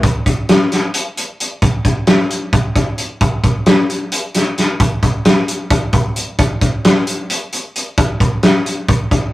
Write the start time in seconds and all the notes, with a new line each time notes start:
0.03 kick, closed hi-hat
0.26 kick, closed hi-hat
0.49 snare, closed hi-hat
0.72 snare, closed hi-hat
0.94 closed hi-hat
1.17 closed hi-hat
1.40 closed hi-hat
1.62 kick, closed hi-hat
1.85 kick, closed hi-hat
2.07 snare, closed hi-hat
2.30 closed hi-hat
2.53 kick, closed hi-hat
2.75 kick, closed hi-hat
2.98 closed hi-hat
3.21 kick, closed hi-hat
3.43 kick, closed hi-hat
3.66 snare, closed hi-hat
3.90 closed hi-hat
4.12 closed hi-hat
4.34 snare, closed hi-hat
4.58 snare, closed hi-hat
4.80 kick, closed hi-hat
5.03 kick, closed hi-hat
5.25 snare, closed hi-hat
5.48 closed hi-hat
5.70 kick, closed hi-hat
5.93 kick, closed hi-hat
6.16 closed hi-hat
6.39 kick, closed hi-hat
6.61 kick, closed hi-hat
6.85 snare, closed hi-hat
7.07 closed hi-hat
7.30 closed hi-hat
7.52 closed hi-hat
7.76 closed hi-hat
7.98 kick, closed hi-hat
8.20 kick, closed hi-hat
8.43 snare, closed hi-hat
8.66 closed hi-hat
8.89 kick, closed hi-hat
9.11 kick, closed hi-hat